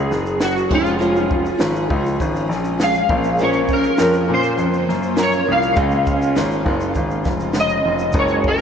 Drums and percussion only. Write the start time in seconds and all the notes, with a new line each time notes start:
0.12 snare, shaker
0.26 shaker
0.40 snare, shaker
0.58 shaker
0.71 kick, crash
0.86 shaker
1.01 shaker
1.16 shaker
1.31 kick
1.46 shaker
1.60 snare, shaker
1.76 shaker
1.90 kick
2.06 shaker
2.20 kick, shaker
2.36 shaker
2.51 snare, shaker
2.65 shaker
2.80 snare, shaker
2.95 shaker
3.09 kick
3.24 shaker
3.38 shaker
3.53 shaker
3.68 kick, shaker
3.83 shaker
3.98 snare, shaker
4.14 shaker
4.43 shaker
4.58 shaker
4.73 shaker
4.89 snare
5.03 shaker
5.17 snare, shaker
5.33 shaker
5.62 shaker
5.76 kick, shaker
5.91 shaker
6.07 kick, shaker
6.22 shaker
6.36 snare, shaker
6.52 shaker
6.66 kick
6.80 shaker
6.95 kick, shaker
7.11 shaker
7.25 kick, snare, shaker
7.40 shaker
7.53 snare, shaker
7.69 shaker
7.99 shaker
8.12 kick, shaker
8.28 shaker
8.44 kick